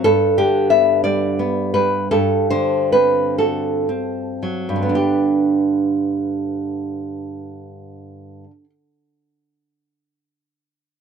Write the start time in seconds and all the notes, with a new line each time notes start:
0.04 G2 A4
0.38 D3 G4
0.70 B3 E5
1.04 G3 D5
1.39 B3
1.74 G3 B4
2.11 G2 A4
2.50 D3 C5
2.92 C4 B4
3.38 F#4 A4
3.89 C4
4.43 F#3
4.69 G2
4.76 D3
4.83 B3
4.89 D4
4.95 G4